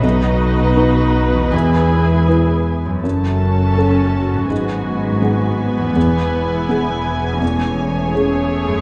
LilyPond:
<<
  \new Staff \with { instrumentName = "Violin section" } { \time 4/4 \key e \major \tempo 4 = 82 << { dis''2 gis''4. r8 | a''2 gis''2~ | gis''1 | } \\ { b'2.~ b'8 r8 | a'2 b'2~ | b'2 cis''2 | } >> }
  \new Staff \with { instrumentName = "Viola section" } { \time 4/4 \key e \major << { fis'2 gis'4. r8 | fis'1 | e'2 gis'2 | } \\ { dis'2 e'4. r8 | cis'2 b2~ | b2 a2 | } >> }
  \new Staff \with { instrumentName = "Felt piano" } { \time 4/4 \key e \major b,,4 <dis' b'>4 e,4 <e' b'>4 | fis,4 <cis' a'>4 gis,4 <b gis'>4 | e,4 <b gis'>4 e,4 <cis' gis'>4 | }
  \new Staff \with { instrumentName = "Harp" } { \time 4/4 \key e \major <b, fis dis' b'>2 <e, gis e' b'>2 | <fis, fis cis' a'>2 <gis, fis b gis'>2 | <e, gis b gis'>2 <e, a cis' gis'>2 | }
  \new Staff \with { instrumentName = "Cello section" } { \clef bass \time 4/4 \key e \major b,2 e,4. r8 | fis,2 gis,2 | e,1 | }
  \new Staff \with { instrumentName = "Double bass section" } { \clef bass \time 4/4 \key e \major b,,2 e,,4. r8 | fis,,2 gis,,2 | e,,1 | }
>>